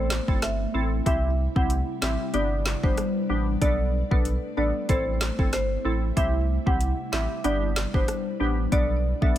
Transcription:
0.00 0.20 A1 loud
0.00 1.04 A3 medium
0.00 0.24 C4 loud
0.00 0.24 E4 medium
0.00 2.31 E4 medium
0.00 0.24 A4 loud
0.00 0.25 C5 loud
0.10 snare loud
0.10 clap medium
0.28 0.67 G1 medium
0.28 0.48 C4 medium
0.28 0.48 E4 medium
0.28 0.48 A4 medium
0.28 kick loud
0.42 0.89 E5 medium
0.42 cross-stick loud
0.42 snare medium
0.42 closed hi-hat medium
0.74 1.01 A1 medium
0.74 0.97 C4 medium
0.74 0.97 E4 medium
0.74 0.97 A4 medium
1.06 1.48 C2 loud
1.06 3.59 G3 medium
1.06 1.29 C4 loud
1.06 1.29 E4 medium
1.06 1.29 G4 loud
1.06 1.28 E5 loud
1.06 kick medium
1.06 closed hi-hat medium
1.56 1.83 C2 loud
1.56 1.76 C4 medium
1.56 1.76 E4 medium
1.56 1.76 G4 medium
1.56 1.66 F#5 medium
1.56 kick loud
1.70 closed hi-hat medium
2.02 2.17 A1 medium
2.02 2.24 C4 medium
2.02 2.25 E4 medium
2.02 2.25 G4 medium
2.02 2.14 E5 medium
2.02 snare loud
2.02 clap medium
2.34 2.75 G1 loud
2.34 2.79 B3 loud
2.34 2.79 D4 medium
2.34 4.87 D4 medium
2.34 2.80 G4 loud
2.34 2.46 D5 medium
2.34 closed hi-hat medium
2.66 snare loud
2.66 clap medium
2.83 2.95 G1 medium
2.83 3.04 B3 medium
2.83 3.04 D4 medium
2.83 3.04 G4 medium
2.83 2.93 C5 medium
2.83 kick medium
2.98 cross-stick loud
2.98 closed hi-hat medium
3.29 3.56 A1 medium
3.29 3.52 B3 medium
3.29 3.52 D4 medium
3.29 3.52 G4 medium
3.61 4.03 B1 loud
3.61 6.14 A3 medium
3.61 3.84 B3 loud
3.61 3.84 D4 medium
3.61 3.84 A4 loud
3.61 3.84 D5 loud
3.61 kick medium
3.61 closed hi-hat medium
4.11 4.38 B1 loud
4.11 4.31 B3 medium
4.11 4.31 D4 medium
4.11 4.31 A4 medium
4.11 4.21 B4 medium
4.11 kick medium
4.25 closed hi-hat medium
4.57 4.72 A1 medium
4.57 4.80 B3 medium
4.57 4.80 D4 medium
4.57 4.80 A4 medium
4.57 4.70 D5 medium
4.89 5.31 A1 loud
4.89 5.35 C4 loud
4.89 5.35 E4 medium
4.89 7.42 E4 medium
4.89 5.35 A4 loud
4.89 5.36 C5 loud
4.89 kick medium
4.89 closed hi-hat medium
5.21 snare loud
5.21 clap medium
5.39 5.77 G1 medium
5.39 5.59 C4 medium
5.39 5.59 E4 medium
5.39 5.59 A4 medium
5.39 kick medium
5.53 6.00 C5 medium
5.53 cross-stick medium
5.53 snare medium
5.53 closed hi-hat medium
5.85 6.12 A1 loud
5.85 6.07 C4 medium
5.85 6.08 E4 medium
5.85 6.08 A4 medium
6.17 6.58 C2 loud
6.17 8.70 G3 medium
6.17 6.39 C4 loud
6.17 6.39 E4 medium
6.17 6.40 G4 loud
6.17 6.39 E5 loud
6.17 kick medium
6.17 closed hi-hat medium
6.66 6.93 C2 loud
6.66 6.86 C4 medium
6.66 6.87 E4 medium
6.66 6.87 G4 medium
6.66 6.76 F#5 medium
6.66 kick medium
6.81 closed hi-hat medium
7.12 7.27 A1 loud
7.12 7.35 C4 medium
7.12 7.35 E4 medium
7.12 7.35 G4 medium
7.12 7.25 E5 medium
7.12 snare loud
7.12 clap medium
7.44 7.86 G1 loud
7.44 7.90 B3 loud
7.44 7.90 D4 medium
7.44 9.38 D4 medium
7.44 7.90 G4 loud
7.44 7.57 D5 medium
7.44 closed hi-hat medium
7.76 snare loud
7.76 clap medium
7.94 8.06 G1 loud
7.94 8.14 B3 medium
7.94 8.14 D4 medium
7.94 8.14 G4 medium
7.94 8.04 C5 medium
7.94 kick loud
8.08 cross-stick loud
8.08 closed hi-hat medium
8.40 8.67 A1 medium
8.40 8.63 B3 medium
8.40 8.63 D4 medium
8.40 8.63 G4 medium
8.72 9.14 B1 loud
8.72 9.38 A3 medium
8.72 8.95 B3 loud
8.72 8.95 D4 medium
8.72 8.95 A4 loud
8.72 8.94 D5 loud
8.72 kick medium
8.72 closed hi-hat medium
9.22 9.38 B1 loud
9.22 9.38 B3 medium
9.22 9.38 D4 medium
9.22 9.38 A4 medium
9.22 9.32 E5 medium
9.22 kick loud

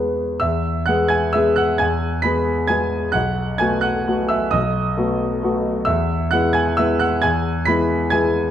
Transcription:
0.00 0.42 E2 soft
0.00 0.44 G#3 soft
0.00 0.44 B3 soft
0.00 0.45 B4 soft
0.00 0.16 G#5 medium
0.40 0.87 E2 medium
0.40 0.84 E5 medium
0.40 0.87 E6 medium
0.86 1.32 G#3 soft
0.86 1.32 B3 soft
0.86 1.32 G#4 soft
0.86 1.09 F#5 medium
0.86 1.10 F#6 medium
1.08 1.33 G#5 medium
1.08 1.34 G#6 medium
1.33 1.77 G#3 soft
1.33 1.77 B3 soft
1.33 1.77 G#4 soft
1.33 1.56 E5 medium
1.33 1.57 E6 medium
1.56 1.79 F#5 medium
1.56 1.80 F#6 medium
1.78 2.24 E2 medium
1.78 2.21 G#5 medium
1.78 2.24 G#6 medium
2.22 2.66 G#3 soft
2.22 2.66 B3 soft
2.22 2.66 G#4 soft
2.22 2.66 B5 medium
2.22 2.69 B6 medium
2.67 3.11 G#3 soft
2.67 3.11 B3 soft
2.67 3.11 G#4 soft
2.67 3.11 G#5 medium
2.67 3.14 G#6 medium
3.12 3.59 B1 medium
3.12 3.56 F#5 medium
3.12 3.59 F#6 medium
3.58 4.03 A3 soft
3.58 4.03 B3 soft
3.58 4.04 F#4 soft
3.58 3.82 G#5 medium
3.58 3.83 G#6 medium
3.81 4.26 F#5 medium
3.81 4.29 F#6 medium
4.08 4.49 A3 soft
4.08 4.49 B3 soft
4.08 4.49 F#4 soft
4.29 4.51 E5 medium
4.29 4.52 E6 medium
4.51 4.96 B1 medium
4.51 5.83 D#5 medium
4.51 5.87 D#6 medium
4.97 5.39 A3 soft
4.97 5.39 B3 soft
4.97 5.40 F#4 soft
5.43 5.84 A3 soft
5.43 5.84 B3 soft
5.43 5.84 F#4 soft
5.85 6.31 E2 medium
5.85 6.29 E5 medium
5.85 6.31 E6 medium
6.31 6.75 G#3 soft
6.31 6.76 B3 soft
6.31 6.76 E4 soft
6.31 6.54 F#5 medium
6.31 6.55 F#6 medium
6.53 6.77 G#5 medium
6.53 6.78 G#6 medium
6.77 7.20 G#3 soft
6.77 7.20 B3 soft
6.77 7.20 E4 soft
6.77 7.00 E5 medium
6.77 7.01 E6 medium
6.99 7.22 F#5 medium
6.99 7.23 F#6 medium
7.22 7.66 E2 medium
7.22 7.64 G#5 medium
7.22 7.67 G#6 medium
7.65 8.09 G#3 soft
7.65 8.09 B3 soft
7.65 8.09 E4 soft
7.65 8.09 B5 medium
7.65 8.12 B6 medium
8.10 8.51 G#3 soft
8.10 8.51 B3 soft
8.10 8.51 E4 soft
8.10 8.51 G#5 medium
8.10 8.51 G#6 medium

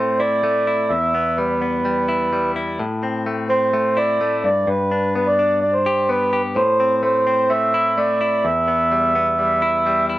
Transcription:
0.00 0.91 A2 medium
0.00 0.42 A3 medium
0.00 0.95 C4 medium
0.00 0.21 C5 medium
0.19 0.67 E4 medium
0.19 0.92 D5 medium
0.43 0.95 A3 medium
0.67 2.08 E4 medium
0.89 2.79 E2 medium
0.89 1.38 E5 loud
1.15 1.60 B3 medium
1.37 1.84 G3 soft
1.37 2.52 B4 medium
1.62 2.84 B3 medium
1.85 2.31 G3 medium
2.08 2.55 E4 medium
2.33 2.84 G3 medium
2.56 2.84 E4 medium
2.79 4.45 A2 medium
3.03 3.49 C4 medium
3.26 3.72 A3 medium
3.49 4.49 C4 medium
3.49 3.98 C5 medium
3.73 4.20 A3 medium
3.97 4.49 E4 medium
3.97 4.43 D5 medium
4.21 4.49 A3 medium
4.44 4.66 G2 medium
4.44 4.69 D5 medium
4.67 6.56 G2 medium
4.67 5.14 B4 medium
4.91 5.38 D4 medium
5.15 5.62 B3 medium
5.15 5.28 B4 medium
5.27 5.60 D5 medium
5.39 6.61 D4 medium
5.61 5.74 D5 medium
5.73 6.10 C5 medium
5.86 6.32 G4 medium
6.09 6.61 B3 medium
6.09 6.42 B4 medium
6.33 6.61 G4 medium
6.56 8.45 A2 medium
6.56 7.01 C5 medium
6.80 7.25 C4 medium
7.03 7.49 A3 medium
7.03 7.52 C5 medium
7.27 8.49 C4 medium
7.50 7.96 A3 medium
7.50 7.99 E5 loud
7.74 8.20 E4 medium
7.97 8.49 A3 medium
7.97 8.46 D5 medium
8.21 9.62 E4 medium
8.45 10.19 E2 medium
8.45 10.06 E5 loud
8.68 9.14 B3 medium
8.92 9.38 G3 medium
9.15 10.19 B3 medium
9.39 9.85 G3 medium
9.62 10.08 E4 medium
9.86 10.19 G3 medium
10.10 10.19 E4 medium

